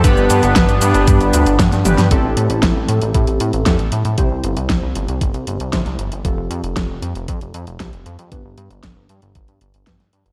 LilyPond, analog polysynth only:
\new Staff \with { instrumentName = "Analog polysynth" } { \time 4/4 \key a \minor \tempo 4 = 116 <g, b d' g' b'>2. r8 <b d' g' b'>8 | <a, c' e' g' a'>2. <a, c' e' g' a'>8 r8 | <c c' e' g' c''>2. <c c' e' g' c''>8 r8 | <f c' f' g' a'>2. <f c' f' g' a'>8 r8 |
<g, b d' g' b'>2. <g, b d' g' b'>8 r8 | }